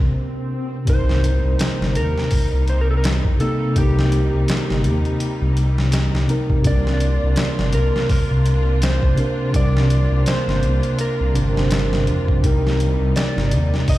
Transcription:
Already playing: string section A#3 D4 F4, tine electric piano D4 A#4, electric slide guitar A#4, swell
0.00 detuned saw bass C2, kick
0.85 detuned saw bass C2, tine electric piano C3 C4 D#4, string section C3 G3 A#3 D#4, kick, closed hi-hat, impact
0.89 tine electric piano A#4, electric slide guitar C5
1.09 snare
1.24 closed hi-hat
1.45 detuned saw bass C2
1.59 snare, closed hi-hat
1.82 detuned saw bass G1, snare
1.95 detuned saw bass D#2, electric slide guitar A#4, closed hi-hat
2.18 snare
2.31 kick, open hi-hat
2.53 detuned saw bass C2
2.68 electric slide guitar C5, closed hi-hat
2.81 electric slide guitar A#4
2.91 electric slide guitar A4
2.97 electric slide guitar A#4
3.04 snare, closed hi-hat
3.25 detuned saw bass C2, kick
3.39 tine electric piano C3 A#3 C4 D#4, electric slide guitar A4, closed hi-hat
3.74 detuned saw bass C2, tine electric piano C3 C4, electric slide guitar G4, kick, closed hi-hat
3.79 tine electric piano D#4 A#4
3.99 snare
4.12 closed hi-hat
4.34 detuned saw bass C2
4.48 snare, closed hi-hat
4.70 detuned saw bass G1, snare
4.84 detuned saw bass D#2, closed hi-hat
5.05 closed hi-hat
5.20 closed hi-hat
5.42 detuned saw bass C2
5.57 closed hi-hat
5.78 snare
5.92 snare, closed hi-hat
6.14 detuned saw bass C2, snare
6.27 tine electric piano C3 C4 D#4 A#4, closed hi-hat
6.50 kick
6.62 detuned saw bass C2, tine electric piano C3 C4 D4, string section C3 D4 F4, kick, closed hi-hat
6.67 tine electric piano A#4, electric slide guitar D5
6.87 snare
7.00 closed hi-hat
7.24 detuned saw bass C2
7.36 snare, closed hi-hat
7.59 detuned saw bass G1, snare
7.73 detuned saw bass C2, electric slide guitar A#4, closed hi-hat
7.96 snare
8.09 electric slide guitar A#4, kick, open hi-hat
8.31 detuned saw bass C2
8.46 closed hi-hat
8.82 electric slide guitar C5, snare, closed hi-hat
9.03 detuned saw bass C2, kick
9.16 tine electric piano C3 C4 D4 A#4, closed hi-hat
9.51 detuned saw bass C2, tine electric piano C3 C4 D4, kick, closed hi-hat
9.56 tine electric piano A#4, electric slide guitar D5
9.77 snare
9.90 closed hi-hat
10.12 detuned saw bass C2
10.26 electric slide guitar C5, snare, closed hi-hat
10.48 detuned saw bass G1, snare
10.63 detuned saw bass C2, closed hi-hat
10.83 closed hi-hat
10.99 electric slide guitar A#4, closed hi-hat
11.20 detuned saw bass C2
11.33 detuned saw bass G1, tine electric piano C3 C4 D4 A#4, closed hi-hat
11.53 detuned saw bass G1, tine electric piano C3 C4 D4, snare
11.59 tine electric piano C5
11.71 snare, closed hi-hat
11.93 snare
12.07 detuned saw bass F2, closed hi-hat
12.28 kick
12.41 detuned saw bass C2, tine electric piano C3 C4 D#4, string section G3 D#4, kick, closed hi-hat
12.46 tine electric piano A#4
12.67 snare
12.80 closed hi-hat
13.01 detuned saw bass C2
13.16 electric slide guitar D5, snare, closed hi-hat
13.37 detuned saw bass G1, snare
13.51 detuned saw bass D#2, closed hi-hat
13.74 snare
13.88 electric slide guitar D#5, kick, open hi-hat

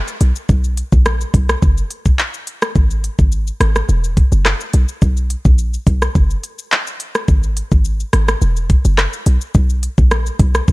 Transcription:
0.08 shaker
0.21 808-style bass B1, closed hi-hat, shaker
0.36 shaker
0.49 808-style bass B1, kick, shaker
0.64 shaker
0.77 closed hi-hat, shaker
0.92 808-style bass A#1, kick, shaker
1.06 cross-stick, shaker
1.21 shaker
1.34 808-style bass B1, kick, closed hi-hat, shaker
1.49 cross-stick, shaker
1.62 808-style bass F#1, kick, shaker
1.78 shaker
1.91 closed hi-hat, shaker
2.06 kick, shaker
2.19 clap, shaker
2.34 shaker
2.47 closed hi-hat, shaker
2.62 cross-stick, shaker
2.75 808-style bass G#1, kick, shaker
2.91 shaker
3.04 closed hi-hat, shaker
3.19 808-style bass G#1, kick, shaker
3.32 shaker
3.47 shaker
3.60 808-style bass G#1, cross-stick, closed hi-hat, shaker
3.76 cross-stick, shaker
3.89 808-style bass E1, shaker
4.04 shaker
4.17 kick, closed hi-hat, shaker
4.32 808-style bass F#1, shaker
4.45 cross-stick, clap, shaker
4.61 shaker
4.73 808-style bass B1, closed hi-hat, shaker
4.88 shaker
5.02 808-style bass B1, kick, shaker
5.17 shaker
5.30 closed hi-hat, shaker
5.45 808-style bass A#1, kick, shaker
5.58 shaker
5.74 shaker
5.87 808-style bass B1, kick, closed hi-hat, shaker
6.02 cross-stick, shaker
6.15 808-style bass F#1, kick, shaker
6.30 shaker
6.44 closed hi-hat, shaker
6.59 shaker
6.72 clap, shaker
6.87 shaker
7.00 closed hi-hat, shaker
7.15 cross-stick, shaker
7.28 808-style bass G#1, kick, shaker
7.43 shaker
7.57 closed hi-hat, shaker
7.72 808-style bass G#1, kick, shaker
7.85 shaker
8.00 shaker
8.13 808-style bass G#1, cross-stick, closed hi-hat, shaker
8.28 cross-stick, shaker
8.42 808-style bass E1, shaker
8.56 shaker
8.70 kick, closed hi-hat, shaker
8.85 808-style bass F#1, shaker
8.98 cross-stick, clap, shaker
9.13 shaker
9.26 808-style bass B1, closed hi-hat, shaker
9.41 shaker
9.55 808-style bass B1, kick, shaker
9.70 shaker
9.83 closed hi-hat, shaker
9.98 808-style bass A#1, kick, shaker
10.11 cross-stick, shaker
10.26 shaker
10.39 808-style bass B1, kick, closed hi-hat, shaker
10.55 cross-stick, shaker
10.68 808-style bass F#1, kick, shaker

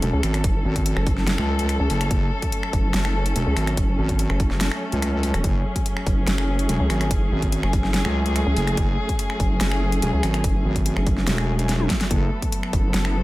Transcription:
Already playing: string section F#3 A3 C#4 A4, impact
0.02 wobble bass E1, closed hi-hat
0.13 wobble bass C#2
0.23 wobble bass G#1, finger snap, open hi-hat
0.34 finger snap, closed hi-hat
0.44 wobble bass F#1, kick, closed hi-hat
0.65 wobble bass G#1
0.76 kick, closed hi-hat
0.86 closed hi-hat
0.97 wobble bass F#1, finger snap
1.07 kick, open hi-hat
1.17 snare
1.27 snare, closed hi-hat
1.38 wobble bass C#2, finger snap
1.59 closed hi-hat
1.69 finger snap, closed hi-hat
1.80 wobble bass C#2
1.90 wobble bass F#1, open hi-hat
2.01 finger snap, closed hi-hat
2.11 wobble bass F#1, kick, closed hi-hat
2.42 kick, closed hi-hat
2.52 closed hi-hat
2.63 finger snap
2.73 wobble bass F#1, kick, open hi-hat
2.94 wobble bass F#1, snare, closed hi-hat
3.05 finger snap
3.26 closed hi-hat
3.36 wobble bass E1, closed hi-hat
3.47 wobble bass C#2
3.57 wobble bass G#1, finger snap, open hi-hat
3.67 finger snap, closed hi-hat
3.77 wobble bass F#1, kick, closed hi-hat
3.98 wobble bass G#1
4.09 kick, closed hi-hat
4.19 closed hi-hat
4.30 wobble bass F#1, finger snap
4.40 kick, open hi-hat
4.51 wobble bass F#1, snare
4.61 snare, closed hi-hat
4.72 finger snap
4.92 wobble bass C#2, closed hi-hat
5.02 finger snap, closed hi-hat
5.23 open hi-hat
5.34 wobble bass E1, finger snap, closed hi-hat
5.44 wobble bass F#1, string section G#4, kick, closed hi-hat
5.76 kick, closed hi-hat
5.86 closed hi-hat
5.97 finger snap
6.07 wobble bass F#1, kick, open hi-hat
6.27 wobble bass F#1, snare, closed hi-hat
6.38 finger snap
6.59 closed hi-hat
6.69 wobble bass E1, closed hi-hat
6.80 wobble bass C#2
6.90 wobble bass G#1, finger snap, open hi-hat
7.01 finger snap, closed hi-hat
7.11 wobble bass F#1, kick, closed hi-hat
7.32 wobble bass G#1
7.42 kick, closed hi-hat
7.52 closed hi-hat
7.63 wobble bass F#1, finger snap
7.73 kick, open hi-hat
7.84 snare
7.94 snare, closed hi-hat
8.05 wobble bass C#2, finger snap
8.26 closed hi-hat
8.36 finger snap, closed hi-hat
8.47 wobble bass C#2
8.57 wobble bass F#1, open hi-hat
8.67 finger snap, closed hi-hat
8.77 wobble bass F#1, kick, closed hi-hat
9.09 kick, closed hi-hat
9.19 closed hi-hat
9.30 finger snap
9.40 wobble bass F#1, kick, open hi-hat
9.61 wobble bass F#1, snare, closed hi-hat
9.72 finger snap
9.92 closed hi-hat
10.02 wobble bass E1, closed hi-hat
10.13 wobble bass C#2
10.23 wobble bass G#1, finger snap, open hi-hat
10.34 finger snap, closed hi-hat
10.44 wobble bass F#1, kick, closed hi-hat
10.65 wobble bass G#1
10.76 kick, closed hi-hat
10.86 closed hi-hat
10.97 wobble bass F#1, finger snap
11.07 kick, open hi-hat
11.17 snare
11.27 wobble bass E1, snare, closed hi-hat
11.38 finger snap
11.59 closed hi-hat
11.69 snare, closed hi-hat
11.80 high tom
11.90 kick, snare, open hi-hat
12.01 snare, closed hi-hat
12.11 wobble bass F#1, string section B3 A4, kick, closed hi-hat
12.42 kick, closed hi-hat
12.52 closed hi-hat
12.63 finger snap
12.73 wobble bass F#1, kick, open hi-hat
12.94 wobble bass F#1, snare, closed hi-hat
13.05 finger snap

